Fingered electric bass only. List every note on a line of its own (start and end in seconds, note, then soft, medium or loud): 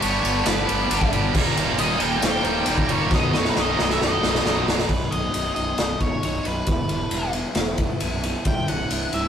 0.03 0.21 G1 medium
0.24 0.42 G1 medium
0.46 0.65 G1 medium
0.70 0.88 G1 medium
0.90 1.09 G1 medium
1.13 1.31 G1 medium
1.35 1.53 D#1 medium
1.56 1.75 D#1 medium
1.78 1.97 D#1 medium
1.99 2.19 D#1 medium
2.21 2.40 D#1 medium
2.44 2.63 D#1 medium
2.67 2.86 D#1 medium
2.89 3.08 D#1 loud
3.11 3.48 B0 medium
3.56 3.74 B0 medium
3.79 3.97 B0 medium
4.02 4.20 B0 medium
4.22 4.41 B0 medium
4.45 4.63 B0 medium
4.67 4.85 B0 medium
4.89 5.05 B0 medium
5.12 5.27 B0 medium
5.34 5.50 B0 medium
5.57 5.72 B0 medium
5.79 5.94 B0 medium
6.01 6.16 E1 medium
6.23 6.38 B0 medium
6.45 6.61 B0 medium
6.68 6.83 E1 medium
6.88 7.04 E1 medium
7.10 7.42 E1 medium
7.56 7.87 E1 medium
8.02 8.33 B0 medium
8.45 8.61 C1 medium
8.68 8.84 C1 medium
8.90 9.06 C1 medium
9.13 9.28 C1 medium